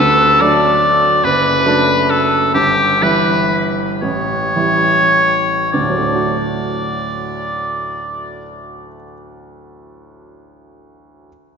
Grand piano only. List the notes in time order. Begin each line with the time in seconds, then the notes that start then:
0.00 D2
0.41 F#3 A3 D4
1.24 F#1
1.65 F#3 A3 D4
2.55 G1
3.02 E3 G3 E4
4.02 A1
4.56 E3 G3 E4
5.74 D2
5.82 A2
5.90 F#3
5.98 A3
6.06 D4
6.15 F#4